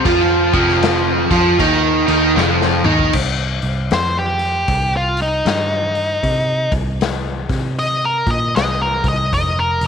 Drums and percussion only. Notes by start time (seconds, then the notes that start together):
0.05 kick, crash
0.54 kick, crash
0.69 snare
0.83 snare, crash
1.31 kick, snare, crash
1.59 kick, crash
2.08 crash
2.37 snare
2.62 snare
2.84 mid tom
2.99 kick
3.13 kick, crash
3.62 open hi-hat
3.91 snare, open hi-hat
4.39 open hi-hat
4.68 kick, open hi-hat
5.17 open hi-hat
5.46 snare, open hi-hat
5.95 open hi-hat
6.23 kick, open hi-hat
6.72 kick, open hi-hat
7.01 snare, open hi-hat
7.49 kick, snare, open hi-hat
7.79 open hi-hat
8.27 kick, open hi-hat
8.56 snare, open hi-hat
9.04 kick, open hi-hat
9.33 kick, open hi-hat
9.81 open hi-hat